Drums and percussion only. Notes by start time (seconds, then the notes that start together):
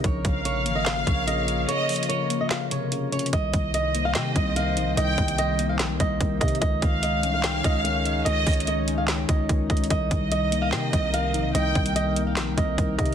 0.04 kick, closed hi-hat
0.25 kick, closed hi-hat
0.45 closed hi-hat
0.66 closed hi-hat
0.86 snare, clap, closed hi-hat
1.07 kick, closed hi-hat
1.28 closed hi-hat
1.48 closed hi-hat
1.69 closed hi-hat
1.89 closed hi-hat, open hi-hat
1.96 closed hi-hat
2.03 closed hi-hat
2.10 closed hi-hat
2.30 closed hi-hat
2.50 snare, clap, closed hi-hat
2.71 closed hi-hat
2.92 closed hi-hat
3.12 closed hi-hat
3.19 closed hi-hat
3.26 closed hi-hat
3.33 kick, closed hi-hat
3.53 kick, closed hi-hat
3.74 closed hi-hat
3.95 closed hi-hat
4.15 snare, clap, closed hi-hat
4.36 kick, closed hi-hat
4.56 closed hi-hat
4.77 closed hi-hat
4.97 closed hi-hat
5.18 kick, closed hi-hat
5.28 closed hi-hat
5.38 closed hi-hat
5.59 closed hi-hat
5.79 snare, clap, closed hi-hat
6.00 kick, closed hi-hat
6.21 kick, closed hi-hat
6.41 kick, closed hi-hat
6.48 closed hi-hat
6.55 closed hi-hat
6.62 kick, closed hi-hat
6.82 kick, closed hi-hat
7.03 closed hi-hat
7.23 closed hi-hat
7.44 snare, clap, closed hi-hat
7.64 kick, closed hi-hat
7.85 closed hi-hat
8.05 closed hi-hat
8.26 closed hi-hat
8.47 kick, closed hi-hat, open hi-hat
8.53 closed hi-hat
8.60 closed hi-hat
8.67 closed hi-hat
8.88 closed hi-hat
9.08 snare, clap, closed hi-hat
9.29 kick, closed hi-hat
9.49 kick, closed hi-hat
9.70 kick, closed hi-hat
9.77 closed hi-hat
9.84 closed hi-hat
9.90 kick, closed hi-hat
10.11 kick, closed hi-hat
10.32 closed hi-hat
10.52 closed hi-hat
10.72 snare, clap, closed hi-hat
10.93 kick, closed hi-hat
11.14 closed hi-hat
11.34 closed hi-hat
11.55 closed hi-hat
11.75 kick, closed hi-hat
11.86 closed hi-hat
11.96 closed hi-hat
12.16 closed hi-hat
12.37 snare, clap, closed hi-hat
12.58 kick, closed hi-hat
12.78 kick, closed hi-hat
12.99 kick, closed hi-hat
13.06 closed hi-hat